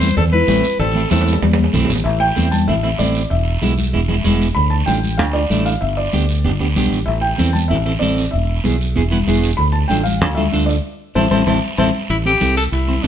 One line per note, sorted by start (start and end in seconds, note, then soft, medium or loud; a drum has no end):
0.00 0.11 E2 loud
0.00 0.13 E4 medium
0.00 0.13 C5 loud
0.00 high conga medium
0.00 short guiro medium
0.17 0.42 E2 loud
0.17 0.23 C4 medium
0.17 0.24 A4 medium
0.17 cowbell medium
0.17 high conga soft
0.17 low conga medium
0.17 long guiro medium
0.33 0.77 E4 medium
0.33 0.76 B4 loud
0.33 high conga medium
0.47 0.61 A1 loud
0.47 0.65 A3 medium
0.47 0.65 C4 medium
0.47 0.65 E4 medium
0.47 high conga medium
0.47 low timbale medium
0.47 short guiro medium
0.64 short guiro medium
0.79 1.05 A1 medium
0.79 1.09 C4 medium
0.79 1.09 A4 medium
0.79 cowbell loud
0.79 high conga soft
0.79 low conga medium
0.79 long guiro medium
0.95 1.01 A3 medium
0.95 1.01 C4 medium
0.95 1.01 E4 medium
1.11 1.36 E2 loud
1.11 1.33 A3 medium
1.11 1.33 C4 medium
1.11 1.40 C4 medium
1.11 1.33 E4 medium
1.11 1.40 A4 medium
1.11 high conga medium
1.11 high timbale medium
1.11 short guiro medium
1.21 high timbale medium
1.27 high conga medium
1.27 short guiro medium
1.33 low timbale medium
1.42 1.68 E2 medium
1.42 cowbell medium
1.42 high conga loud
1.42 low timbale loud
1.42 long guiro medium
1.53 low timbale loud
1.58 high conga medium
1.64 low timbale medium
1.73 1.88 B1 medium
1.73 1.90 A3 medium
1.73 1.90 C4 medium
1.73 1.91 E4 loud
1.73 low conga loud
1.73 short guiro medium
1.85 low timbale loud
1.90 2.04 A1 medium
1.90 low conga medium
1.90 short guiro medium
1.95 low timbale medium
2.04 2.30 A1 loud
2.04 2.19 E5 medium
2.04 high conga soft
2.04 long guiro medium
2.20 2.53 G5 loud
2.36 2.70 E2 medium
2.36 2.47 A3 medium
2.36 2.47 C4 soft
2.36 2.48 E4 medium
2.36 high conga medium
2.36 short guiro medium
2.52 2.68 A5 medium
2.52 high conga medium
2.52 short guiro medium
2.68 2.93 A1 medium
2.68 2.73 A3 medium
2.68 2.74 C4 medium
2.68 2.74 E4 medium
2.68 2.82 E5 medium
2.68 high conga soft
2.68 long guiro medium
2.83 2.89 A3 medium
2.83 2.89 C4 soft
2.83 2.89 E4 medium
2.83 3.00 E5 medium
2.99 3.25 A1 medium
2.99 3.21 A3 medium
2.99 3.21 C4 medium
2.99 3.22 E4 medium
2.99 3.31 D5 medium
2.99 high conga medium
2.99 short guiro medium
3.15 short guiro medium
3.30 3.56 E1 loud
3.30 4.21 E5 medium
3.30 high conga soft
3.30 long guiro medium
3.62 3.95 B1 medium
3.62 3.73 G#3 medium
3.62 3.73 B3 medium
3.62 3.73 E4 medium
3.62 high conga medium
3.62 short guiro medium
3.78 high conga medium
3.78 short guiro medium
3.93 4.19 E1 medium
3.93 3.99 G#3 medium
3.93 3.99 B3 medium
3.93 3.99 E4 medium
3.93 high conga soft
3.93 long guiro medium
4.09 4.14 G#3 medium
4.09 4.15 B3 medium
4.09 4.15 E4 medium
4.09 high conga medium
4.24 4.50 E1 medium
4.24 4.47 G#3 medium
4.24 4.47 B3 medium
4.24 4.47 E4 medium
4.24 high conga medium
4.24 short guiro medium
4.41 short guiro medium
4.55 4.81 D2 loud
4.55 4.72 B5 loud
4.55 high conga soft
4.55 long guiro medium
4.70 4.75 A5 medium
4.86 5.19 A1 medium
4.86 4.98 A3 medium
4.86 4.99 D4 medium
4.86 4.99 F4 medium
4.86 5.19 G5 medium
4.86 high conga medium
4.86 short guiro medium
5.03 high conga medium
5.03 short guiro medium
5.18 5.44 D2 medium
5.18 5.24 A3 medium
5.18 5.25 D4 medium
5.18 5.25 F4 medium
5.18 5.23 F5 medium
5.18 high conga soft
5.18 long guiro medium
5.33 5.40 A3 medium
5.33 5.40 D4 soft
5.33 5.40 F4 medium
5.33 5.66 D5 medium
5.50 5.76 A1 medium
5.50 5.72 A3 medium
5.50 5.73 D4 medium
5.50 5.73 E4 medium
5.50 high conga medium
5.50 short guiro medium
5.65 5.80 F5 medium
5.65 short guiro medium
5.81 6.07 G1 medium
5.81 5.96 E5 medium
5.81 high conga soft
5.81 long guiro medium
5.97 6.56 D5 medium
6.13 6.46 D2 medium
6.13 6.24 B3 medium
6.13 6.24 D4 medium
6.13 6.25 G4 medium
6.13 high conga medium
6.13 short guiro medium
6.29 short guiro medium
6.44 6.57 G1 medium
6.44 6.50 B3 medium
6.44 6.50 D4 medium
6.44 6.51 G4 medium
6.44 high conga soft
6.44 long guiro medium
6.60 6.74 D2 medium
6.60 6.66 B3 medium
6.60 6.66 D4 medium
6.60 6.66 G4 medium
6.76 6.90 B1 medium
6.76 6.98 B3 medium
6.76 6.98 D4 medium
6.76 6.99 G4 medium
6.76 high conga medium
6.76 short guiro medium
6.92 7.06 A1 medium
6.92 short guiro medium
7.06 7.33 A1 medium
7.06 7.11 E5 medium
7.06 high conga soft
7.06 long guiro medium
7.21 7.51 G5 medium
7.38 7.72 E2 medium
7.38 7.50 C4 medium
7.38 7.50 E4 medium
7.38 7.50 A4 medium
7.38 high conga medium
7.38 short guiro medium
7.53 7.58 A5 medium
7.53 high conga medium
7.53 short guiro medium
7.68 7.96 A1 medium
7.68 7.76 C4 medium
7.68 7.76 E4 medium
7.68 7.76 A4 medium
7.68 7.98 E5 medium
7.68 high conga soft
7.68 long guiro medium
7.85 7.91 C4 medium
7.85 7.92 E4 medium
7.85 7.92 A4 medium
7.99 8.27 A1 medium
7.99 8.23 C4 medium
7.99 8.24 E4 medium
7.99 8.24 A4 medium
7.99 8.33 D5 medium
7.99 high conga medium
7.99 short guiro medium
8.18 short guiro medium
8.31 8.58 E1 medium
8.31 9.22 E5 medium
8.31 high conga soft
8.31 long guiro medium
8.64 8.98 B1 medium
8.64 8.75 B3 medium
8.64 8.76 E4 medium
8.64 8.76 G#4 medium
8.64 high conga medium
8.64 short guiro medium
8.81 short guiro medium
8.96 9.21 E1 medium
8.96 9.01 B3 medium
8.96 9.02 E4 medium
8.96 9.02 G#4 medium
8.96 high conga soft
8.96 long guiro medium
9.11 9.17 B3 medium
9.11 9.17 E4 medium
9.11 9.17 B4 medium
9.11 high conga medium
9.27 9.52 E1 medium
9.27 9.49 B3 medium
9.27 9.50 E4 medium
9.27 9.50 G#4 medium
9.27 high conga medium
9.27 short guiro medium
9.43 short guiro medium
9.57 9.84 D2 medium
9.57 9.62 B5 loud
9.57 high conga soft
9.57 long guiro medium
9.72 9.77 A5 medium
9.88 10.21 A1 medium
9.88 10.01 D4 medium
9.88 10.01 F4 medium
9.88 10.01 A4 medium
9.88 10.05 G5 medium
9.88 high conga medium
9.88 short guiro medium
10.03 10.34 F5 medium
10.03 high conga medium
10.03 short guiro medium
10.21 10.47 D2 medium
10.21 10.27 D4 medium
10.21 10.27 F4 medium
10.21 10.27 A4 medium
10.21 high conga soft
10.21 long guiro medium
10.35 10.43 D4 medium
10.35 10.43 F4 medium
10.35 10.43 A4 medium
10.35 10.65 E5 medium
10.35 high conga medium
10.52 10.78 D2 medium
10.52 10.75 D4 medium
10.52 10.75 F4 medium
10.52 10.75 A4 medium
10.52 high conga medium
10.52 short guiro medium
10.66 10.71 D5 medium
10.66 short guiro medium
11.15 11.27 A1 medium
11.15 11.26 C4 medium
11.15 11.26 E4 medium
11.15 11.26 A4 medium
11.15 11.25 C5 medium
11.15 11.26 E5 medium
11.15 11.26 A5 medium
11.15 high conga medium
11.15 long guiro medium
11.31 11.43 A1 medium
11.31 11.42 C4 medium
11.31 11.41 E4 medium
11.31 11.41 A4 medium
11.31 11.41 C5 medium
11.31 11.41 E5 medium
11.31 11.41 A5 medium
11.31 high conga medium
11.31 long guiro medium
11.47 11.59 A1 medium
11.47 11.57 C4 medium
11.47 11.57 E4 medium
11.47 11.57 A4 medium
11.47 11.57 C5 medium
11.47 11.57 E5 medium
11.47 11.57 A5 medium
11.47 high conga loud
11.47 long guiro medium
11.78 11.90 A1 medium
11.78 11.89 C4 medium
11.78 11.89 E4 medium
11.78 11.89 A4 medium
11.78 11.88 C5 medium
11.78 11.88 E5 medium
11.78 11.88 A5 medium
11.78 high conga medium
11.78 long guiro medium
12.10 12.35 A1 medium
12.10 12.17 E4 medium
12.10 high conga soft
12.10 high timbale medium
12.10 long guiro medium
12.25 12.31 C4 medium
12.25 12.31 E4 medium
12.25 12.55 G4 medium
12.25 12.31 A4 medium
12.41 12.66 C2 medium
12.41 12.57 C4 medium
12.41 12.58 E4 soft
12.41 12.58 A4 medium
12.41 high conga medium
12.41 high timbale medium
12.41 short guiro medium
12.57 12.64 A4 medium
12.57 high timbale medium
12.57 short guiro medium
12.72 12.98 C2 medium
12.72 13.04 E4 medium
12.72 high conga soft
12.72 high timbale medium
12.72 long guiro medium
12.88 12.94 C4 medium
12.88 12.94 E4 soft
12.88 12.94 C5 medium
12.88 high conga medium
13.03 13.07 F1 medium
13.03 13.07 C4 medium
13.03 13.07 D4 medium
13.03 13.07 E4 medium
13.03 high conga medium
13.03 high timbale medium
13.03 low timbale medium
13.03 short guiro medium